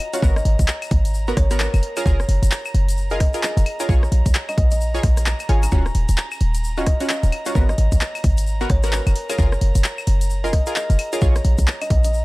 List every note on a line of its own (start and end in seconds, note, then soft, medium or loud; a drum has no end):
0.00 0.10 C#4 medium
0.00 0.10 F4 medium
0.00 0.10 F#4 loud
0.00 0.11 D#5 medium
0.00 12.25 A#5 medium
0.00 open hi-hat loud
0.00 claves medium
0.13 0.21 C#4 medium
0.13 0.21 F4 medium
0.13 0.21 F#4 medium
0.13 0.22 C#5 medium
0.13 closed hi-hat medium
0.13 shaker medium
0.22 0.41 G#1 loud
0.22 0.35 B3 loud
0.22 0.35 F#4 medium
0.22 0.35 A#4 loud
0.22 kick loud
0.22 shaker medium
0.36 1.00 D#5 medium
0.36 cross-stick medium
0.36 shaker soft
0.45 0.55 G#1 medium
0.45 open hi-hat loud
0.59 0.66 G#1 loud
0.59 kick medium
0.59 closed hi-hat medium
0.59 shaker medium
0.68 clap loud
0.68 shaker medium
0.82 open hi-hat medium
0.82 claves medium
0.82 shaker soft
0.91 1.33 G#1 medium
0.91 kick loud
0.91 open hi-hat loud
1.05 closed hi-hat medium
1.05 shaker medium
1.14 shaker medium
1.28 1.36 B3 medium
1.28 1.36 F#4 medium
1.28 1.36 A#4 loud
1.28 shaker soft
1.37 1.68 G#1 medium
1.37 1.58 C#5 medium
1.37 kick loud
1.37 cross-stick medium
1.37 open hi-hat loud
1.51 1.82 B3 medium
1.51 1.82 F#4 medium
1.51 1.82 A#4 loud
1.51 cross-stick medium
1.51 closed hi-hat medium
1.51 shaker medium
1.60 1.73 A#4 medium
1.60 clap loud
1.60 closed hi-hat soft
1.60 shaker medium
1.74 1.80 F#1 medium
1.74 closed hi-hat medium
1.74 claves medium
1.74 shaker soft
1.83 open hi-hat loud
1.97 2.04 F4 medium
1.97 2.04 G#4 medium
1.97 2.04 A#4 medium
1.97 2.43 C#5 medium
1.97 closed hi-hat medium
1.97 claves medium
1.97 shaker medium
2.06 2.24 F#1 loud
2.06 2.18 G#4 medium
2.06 2.18 A#4 loud
2.06 kick loud
2.06 shaker medium
2.20 cross-stick medium
2.20 shaker soft
2.29 2.39 F#1 loud
2.29 open hi-hat loud
2.42 2.49 F#1 loud
2.42 closed hi-hat medium
2.42 shaker medium
2.51 clap loud
2.51 shaker medium
2.65 claves medium
2.65 shaker soft
2.74 3.28 F#1 medium
2.74 open hi-hat loud
2.89 closed hi-hat medium
2.89 shaker medium
2.97 shaker medium
3.10 3.19 F4 medium
3.10 3.19 G#4 medium
3.10 3.19 A#4 loud
3.10 3.17 D#5 medium
3.10 shaker soft
3.20 3.29 D#5 medium
3.20 kick loud
3.20 cross-stick medium
3.20 open hi-hat loud
3.34 3.77 F4 medium
3.34 3.77 G#4 medium
3.34 3.77 A#4 loud
3.34 closed hi-hat medium
3.34 shaker medium
3.43 3.77 D#5 medium
3.43 clap loud
3.43 closed hi-hat soft
3.43 shaker medium
3.57 3.64 F#1 loud
3.57 closed hi-hat medium
3.57 shaker soft
3.66 open hi-hat loud
3.66 claves medium
3.80 3.88 F4 medium
3.80 3.88 G#4 medium
3.80 3.88 A#4 medium
3.80 3.88 C#5 medium
3.80 closed hi-hat medium
3.80 shaker medium
3.89 4.07 A#1 loud
3.89 4.02 F4 loud
3.89 4.02 G#4 medium
3.89 4.02 C#5 loud
3.89 kick loud
3.89 shaker medium
4.03 cross-stick medium
4.03 shaker soft
4.12 4.22 A#1 loud
4.12 open hi-hat loud
4.26 4.32 A#1 loud
4.26 kick medium
4.26 closed hi-hat medium
4.26 shaker medium
4.34 clap loud
4.34 shaker medium
4.49 4.54 D#5 medium
4.49 open hi-hat medium
4.49 claves medium
4.49 shaker soft
4.58 5.00 A#1 medium
4.58 4.67 D#5 medium
4.58 kick loud
4.58 open hi-hat loud
4.71 4.80 D#5 medium
4.71 closed hi-hat medium
4.71 shaker medium
4.81 shaker medium
4.94 5.03 F4 medium
4.94 5.03 G#4 medium
4.94 5.03 C#5 loud
4.94 shaker soft
5.03 5.34 A#1 medium
5.03 kick loud
5.03 cross-stick medium
5.03 open hi-hat loud
5.17 cross-stick medium
5.17 closed hi-hat medium
5.17 shaker medium
5.26 clap loud
5.26 closed hi-hat soft
5.26 shaker medium
5.39 closed hi-hat medium
5.39 claves medium
5.39 shaker soft
5.49 5.67 G#1 medium
5.49 5.67 F4 medium
5.49 5.67 G#4 medium
5.49 5.67 C#5 medium
5.49 5.60 G#5 medium
5.49 open hi-hat loud
5.63 5.78 A#5 medium
5.63 closed hi-hat medium
5.63 claves medium
5.63 shaker medium
5.72 5.90 D#1 loud
5.72 5.85 C#4 loud
5.72 5.85 F4 medium
5.72 5.85 F#4 loud
5.72 kick loud
5.72 shaker medium
5.86 cross-stick medium
5.86 shaker soft
5.95 6.05 D#1 loud
5.95 open hi-hat loud
6.09 6.15 D#1 loud
6.09 closed hi-hat medium
6.09 shaker medium
6.17 clap loud
6.17 shaker medium
6.31 claves medium
6.31 shaker soft
6.41 6.95 D#1 loud
6.41 open hi-hat loud
6.54 closed hi-hat medium
6.54 shaker medium
6.64 shaker medium
6.77 6.86 C#4 medium
6.77 6.86 F4 medium
6.77 6.86 F#4 loud
6.77 6.83 D#5 medium
6.77 shaker soft
6.86 6.96 D#5 medium
6.86 kick loud
6.86 cross-stick medium
6.86 open hi-hat loud
7.00 7.43 C#4 medium
7.00 7.43 F4 medium
7.00 7.43 F#4 loud
7.00 closed hi-hat medium
7.00 shaker medium
7.09 7.44 D#5 medium
7.09 clap loud
7.09 closed hi-hat soft
7.09 shaker medium
7.23 7.30 D#1 loud
7.23 closed hi-hat medium
7.23 shaker soft
7.32 open hi-hat loud
7.32 claves medium
7.46 7.54 C#4 medium
7.46 7.54 F4 medium
7.46 7.54 F#4 medium
7.46 7.55 C#5 medium
7.46 closed hi-hat medium
7.46 shaker medium
7.55 7.73 G#1 loud
7.55 7.68 B3 loud
7.55 7.68 F#4 medium
7.55 7.68 A#4 loud
7.55 kick loud
7.55 shaker medium
7.69 8.32 D#5 medium
7.69 cross-stick medium
7.69 shaker soft
7.78 7.88 G#1 loud
7.78 open hi-hat loud
7.92 7.99 G#1 loud
7.92 kick medium
7.92 closed hi-hat medium
7.92 shaker medium
8.00 clap loud
8.00 shaker medium
8.15 open hi-hat medium
8.15 claves medium
8.15 shaker soft
8.24 8.66 G#1 medium
8.24 kick loud
8.24 open hi-hat loud
8.37 closed hi-hat medium
8.37 shaker medium
8.47 shaker medium
8.61 8.69 B3 medium
8.61 8.69 F#4 medium
8.61 8.69 A#4 loud
8.61 shaker soft
8.70 9.01 G#1 medium
8.70 8.91 C#5 medium
8.70 kick loud
8.70 cross-stick medium
8.70 open hi-hat loud
8.83 9.15 B3 medium
8.83 9.15 F#4 medium
8.83 9.15 A#4 loud
8.83 cross-stick medium
8.83 closed hi-hat medium
8.83 shaker medium
8.93 9.06 A#4 medium
8.93 clap loud
8.93 closed hi-hat soft
8.93 shaker medium
9.07 9.13 F#1 medium
9.07 closed hi-hat medium
9.07 claves medium
9.07 shaker soft
9.16 open hi-hat loud
9.29 9.37 F4 medium
9.29 9.37 G#4 medium
9.29 9.37 A#4 medium
9.29 9.75 C#5 medium
9.29 closed hi-hat medium
9.29 claves medium
9.29 shaker medium
9.38 9.57 F#1 loud
9.38 9.51 F4 loud
9.38 9.51 G#4 medium
9.38 9.51 A#4 loud
9.38 kick loud
9.38 shaker medium
9.52 cross-stick medium
9.52 shaker soft
9.61 9.72 F#1 medium
9.61 open hi-hat loud
9.75 9.82 F#1 loud
9.75 closed hi-hat medium
9.75 shaker medium
9.84 clap loud
9.84 shaker medium
9.98 claves medium
9.98 shaker soft
10.07 10.61 F#1 medium
10.07 open hi-hat loud
10.21 closed hi-hat medium
10.21 shaker medium
10.30 shaker medium
10.44 10.52 F4 medium
10.44 10.52 G#4 medium
10.44 10.52 A#4 loud
10.44 10.50 D#5 medium
10.44 shaker soft
10.53 10.62 D#5 medium
10.53 kick loud
10.53 cross-stick medium
10.53 open hi-hat loud
10.66 11.09 F4 medium
10.66 11.09 G#4 medium
10.66 11.09 A#4 loud
10.66 closed hi-hat medium
10.66 shaker medium
10.76 11.10 D#5 medium
10.76 clap loud
10.76 closed hi-hat soft
10.76 shaker medium
10.90 10.96 F#1 loud
10.90 closed hi-hat medium
10.90 shaker soft
10.99 open hi-hat loud
10.99 claves medium
11.13 11.20 F4 medium
11.13 11.20 G#4 medium
11.13 11.20 A#4 medium
11.13 11.21 C#5 loud
11.13 closed hi-hat medium
11.13 shaker medium
11.21 11.40 A#1 loud
11.21 11.34 F4 loud
11.21 11.34 G#4 medium
11.21 11.34 C#5 loud
11.21 kick loud
11.21 shaker medium
11.36 cross-stick medium
11.36 closed hi-hat soft
11.36 shaker soft
11.45 11.55 A#1 loud
11.45 open hi-hat loud
11.58 11.65 A#1 loud
11.58 kick medium
11.58 closed hi-hat medium
11.58 shaker medium
11.68 clap loud
11.68 shaker medium
11.81 11.87 D#5 loud
11.81 open hi-hat medium
11.81 claves medium
11.81 shaker soft
11.90 12.25 A#1 loud
11.90 11.99 D#5 medium
11.90 kick loud
11.90 open hi-hat loud
12.04 12.13 D#5 medium
12.04 closed hi-hat medium
12.04 shaker medium
12.14 shaker medium